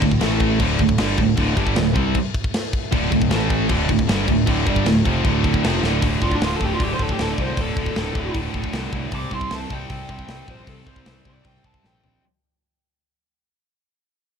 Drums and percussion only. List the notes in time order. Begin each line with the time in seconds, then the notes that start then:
0.02 kick, crash
0.11 kick
0.21 snare, crash
0.40 kick, crash
0.60 kick, crash
0.78 kick, crash
0.89 kick
0.98 snare, crash
1.17 kick, crash
1.37 kick, crash
1.57 kick, crash
1.67 kick
1.76 snare, crash
1.96 kick, crash
2.15 kick, crash
2.34 kick, crash
2.44 kick
2.54 snare, crash
2.73 kick, crash
2.92 kick, crash
3.12 kick, crash
3.22 kick
3.31 snare, crash
3.50 kick, crash
3.69 kick, crash
3.89 kick, crash
3.99 kick
4.09 snare, crash
4.28 kick, crash
4.47 kick, crash
4.67 kick, crash
4.76 kick
4.86 snare, crash
5.05 kick, crash
5.25 kick, crash
5.44 kick, crash
5.54 kick
5.64 snare, crash
5.84 snare
6.02 kick, open hi-hat
6.22 kick
6.31 kick
6.41 snare, open hi-hat
6.61 kick
6.80 kick, open hi-hat
6.99 kick
7.09 kick
7.19 snare, open hi-hat
7.38 kick
7.57 kick, open hi-hat
7.77 kick
7.86 kick
7.96 snare, open hi-hat
8.15 kick
8.34 kick, open hi-hat
8.54 kick
8.64 kick
8.73 snare, open hi-hat
8.93 kick
9.11 kick, open hi-hat
9.31 kick
9.41 kick
9.50 snare, open hi-hat
9.70 kick
9.90 kick, open hi-hat
10.09 kick
10.19 kick
10.28 snare, open hi-hat
10.48 kick
10.67 kick, open hi-hat
10.87 kick
10.96 kick
11.06 snare, open hi-hat
11.25 kick
11.44 kick, open hi-hat
11.64 kick
11.74 kick
11.84 snare
12.04 floor tom